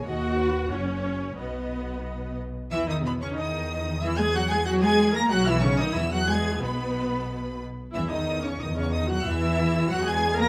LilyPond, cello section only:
\new Staff \with { instrumentName = "Cello section" } { \clef bass \time 2/4 \key b \major \tempo 4 = 92 dis,4 fis,4 | b,4. r8 | \key e \major e16 dis16 b,16 cis16 dis4 | e16 gis16 fis16 gis16 fis16 gis8 ais16 |
fis16 e16 cis16 dis16 e16 fis16 gis8 | b,4. r8 | e16 dis8 cis16 dis16 cis16 dis16 fis16 | e4 fis16 gis8 ais16 | }